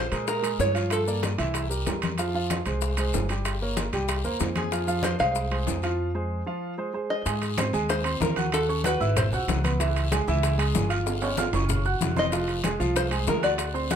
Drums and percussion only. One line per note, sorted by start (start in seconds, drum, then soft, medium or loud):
0.12 high bongo soft
0.12 high conga soft
0.12 high timbale medium
0.12 short guiro medium
0.12 maracas soft
0.27 high bongo medium
0.27 high conga soft
0.27 long guiro medium
0.27 maracas medium
0.43 high bongo soft
0.43 high conga soft
0.43 high timbale medium
0.43 maracas medium
0.59 high bongo soft
0.59 low bongo medium
0.59 low timbale medium
0.59 short guiro medium
0.59 maracas medium
0.75 high timbale medium
0.75 short guiro medium
0.75 maracas soft
0.90 high bongo medium
0.90 high conga soft
0.90 high timbale medium
0.90 long guiro medium
0.90 maracas medium
1.08 high bongo soft
1.08 high conga soft
1.08 maracas medium
1.23 high bongo medium
1.23 high conga medium
1.23 high timbale medium
1.23 low timbale medium
1.23 short guiro medium
1.23 maracas medium
1.38 high bongo soft
1.38 high conga soft
1.38 high timbale medium
1.38 short guiro medium
1.38 maracas soft
1.54 high bongo medium
1.54 high conga soft
1.54 high timbale medium
1.54 long guiro medium
1.54 maracas medium
1.71 high bongo soft
1.71 high conga soft
1.71 maracas medium
1.86 high bongo soft
1.86 low bongo medium
1.86 high timbale medium
1.86 low timbale medium
1.86 short guiro medium
1.86 maracas medium
2.02 high conga medium
2.02 high timbale medium
2.02 short guiro medium
2.02 maracas soft
2.18 high bongo medium
2.18 high timbale medium
2.18 long guiro medium
2.18 maracas medium
2.35 high bongo soft
2.35 high conga soft
2.50 high bongo medium
2.50 high conga medium
2.50 high timbale medium
2.50 low timbale medium
2.50 short guiro medium
2.50 maracas medium
2.66 high bongo soft
2.66 high conga soft
2.66 high timbale medium
2.66 short guiro medium
2.66 maracas soft
2.81 high bongo medium
2.81 high conga soft
2.81 long guiro medium
2.81 maracas medium
2.97 high bongo soft
2.97 high conga soft
2.97 high timbale medium
2.97 maracas medium
3.13 high bongo soft
3.13 low bongo medium
3.13 high conga soft
3.13 low timbale medium
3.13 short guiro medium
3.13 maracas medium
3.29 high timbale medium
3.29 short guiro medium
3.29 maracas soft
3.45 high bongo medium
3.45 high conga soft
3.45 high timbale medium
3.45 long guiro medium
3.45 maracas medium
3.61 high bongo soft
3.61 high conga soft
3.77 high bongo medium
3.77 high conga medium
3.77 high timbale medium
3.77 low timbale medium
3.77 short guiro medium
3.77 maracas medium
3.93 high bongo soft
3.93 high conga soft
3.93 high timbale medium
3.93 short guiro medium
3.93 maracas soft
4.08 high bongo medium
4.08 high conga soft
4.08 high timbale medium
4.08 long guiro medium
4.08 maracas medium
4.24 high bongo soft
4.24 high conga soft
4.24 maracas medium
4.40 high bongo soft
4.40 low bongo medium
4.40 high conga soft
4.40 high timbale medium
4.40 low timbale medium
4.40 short guiro medium
4.40 maracas medium
4.55 high conga medium
4.55 high timbale medium
4.55 short guiro medium
4.55 maracas soft
4.71 high bongo medium
4.71 high timbale medium
4.71 long guiro medium
4.71 maracas medium
4.87 high bongo soft
4.87 high conga soft
4.87 maracas medium
5.03 high bongo soft
5.03 high conga loud
5.03 high timbale medium
5.03 low timbale medium
5.03 short guiro medium
5.03 maracas medium
5.19 high bongo soft
5.19 high conga soft
5.19 high timbale medium
5.19 short guiro medium
5.19 maracas soft
5.35 high bongo medium
5.35 high conga soft
5.35 long guiro medium
5.35 maracas medium
5.51 high bongo soft
5.51 high conga soft
5.51 high timbale medium
5.67 high bongo soft
5.67 low bongo medium
5.67 high conga soft
5.67 low timbale medium
5.67 short guiro medium
5.67 maracas medium
5.82 high timbale medium
5.82 short guiro medium
5.82 maracas soft
7.26 high bongo medium
7.26 high conga soft
7.26 high timbale medium
7.26 long guiro medium
7.26 maracas medium
7.42 high bongo soft
7.42 high conga soft
7.42 high timbale medium
7.42 maracas soft
7.58 high bongo medium
7.58 high conga loud
7.58 high timbale medium
7.58 low timbale medium
7.58 short guiro medium
7.58 maracas medium
7.73 high conga soft
7.73 short guiro medium
7.73 maracas soft
7.89 high bongo medium
7.89 high conga soft
7.89 high timbale medium
7.89 long guiro medium
7.89 maracas medium
8.04 high bongo soft
8.04 high conga soft
8.04 high timbale medium
8.04 maracas soft
8.20 high bongo medium
8.20 low bongo medium
8.20 high conga medium
8.20 low timbale medium
8.20 short guiro medium
8.20 maracas medium
8.36 high bongo soft
8.36 high conga medium
8.36 high timbale medium
8.36 short guiro medium
8.36 maracas soft
8.52 high bongo medium
8.52 high conga soft
8.52 high timbale medium
8.52 long guiro medium
8.52 maracas medium
8.69 high bongo soft
8.69 high conga soft
8.69 maracas soft
8.84 high bongo medium
8.84 high conga medium
8.84 high timbale medium
8.84 low timbale medium
8.84 short guiro medium
8.84 maracas medium
9.00 high bongo soft
9.00 short guiro medium
9.00 maracas soft
9.17 high bongo medium
9.17 high conga soft
9.17 low conga medium
9.17 high timbale medium
9.17 long guiro medium
9.17 maracas medium
9.32 high bongo soft
9.32 high conga soft
9.32 low conga medium
9.32 maracas soft
9.48 high bongo medium
9.48 low bongo medium
9.48 high conga medium
9.48 high timbale medium
9.48 low timbale medium
9.48 short guiro medium
9.48 maracas medium
9.64 high conga medium
9.64 high timbale medium
9.64 short guiro medium
9.64 maracas soft
9.80 high bongo medium
9.80 high timbale medium
9.80 long guiro medium
9.80 maracas medium
9.95 high bongo soft
9.95 high conga soft
9.95 high timbale medium
9.95 maracas soft
10.12 high bongo medium
10.12 high conga medium
10.12 high timbale medium
10.12 low timbale medium
10.12 short guiro medium
10.12 maracas medium
10.27 high conga soft
10.27 short guiro medium
10.27 maracas soft
10.43 high bongo medium
10.43 high timbale medium
10.43 long guiro medium
10.43 maracas medium
10.59 high bongo soft
10.59 high conga soft
10.59 high timbale loud
10.59 maracas soft
10.75 high bongo medium
10.75 low bongo medium
10.75 high conga medium
10.75 low timbale medium
10.75 short guiro medium
10.75 maracas medium
10.90 high bongo soft
10.90 high timbale medium
10.90 short guiro medium
10.90 maracas soft
11.06 high bongo medium
11.06 high conga soft
11.06 high timbale medium
11.06 long guiro medium
11.06 maracas medium
11.22 high bongo soft
11.22 high conga soft
11.22 high timbale loud
11.22 maracas soft
11.37 high bongo medium
11.37 high conga medium
11.37 high timbale medium
11.37 short guiro medium
11.37 maracas medium
11.53 high bongo soft
11.53 low timbale medium
11.53 short guiro medium
11.53 maracas soft
11.69 high bongo medium
11.69 high conga soft
11.69 low conga medium
11.69 long guiro medium
11.69 maracas medium
11.85 high bongo soft
11.85 high conga soft
11.85 maracas soft
12.01 high bongo medium
12.01 low bongo medium
12.01 high conga medium
12.01 low timbale medium
12.01 short guiro medium
12.01 maracas medium
12.16 high conga medium
12.16 low timbale medium
12.16 short guiro medium
12.16 maracas soft
12.32 high bongo medium
12.32 high conga soft
12.32 high timbale medium
12.32 long guiro medium
12.32 maracas medium
12.48 high bongo soft
12.48 high conga soft
12.48 high timbale medium
12.48 maracas soft
12.64 high bongo medium
12.64 high conga loud
12.64 high timbale loud
12.64 low timbale medium
12.64 short guiro medium
12.64 maracas medium
12.80 high conga soft
12.80 short guiro medium
12.80 maracas soft
12.96 high bongo medium
12.96 high conga soft
12.96 high timbale medium
12.96 long guiro medium
12.96 maracas medium
13.11 high bongo soft
13.11 high conga soft
13.11 high timbale medium
13.11 maracas soft
13.27 high bongo medium
13.27 low bongo medium
13.27 high conga medium
13.27 low timbale medium
13.27 short guiro medium
13.27 maracas medium
13.43 high bongo soft
13.43 high timbale medium
13.43 short guiro medium
13.43 maracas soft
13.58 high bongo medium
13.58 high conga soft
13.58 high timbale medium
13.58 long guiro medium
13.58 maracas medium
13.75 high bongo soft
13.75 high conga soft
13.75 maracas soft
13.90 high bongo medium
13.90 high conga loud
13.90 high timbale medium
13.90 low timbale medium
13.90 short guiro medium
13.90 maracas medium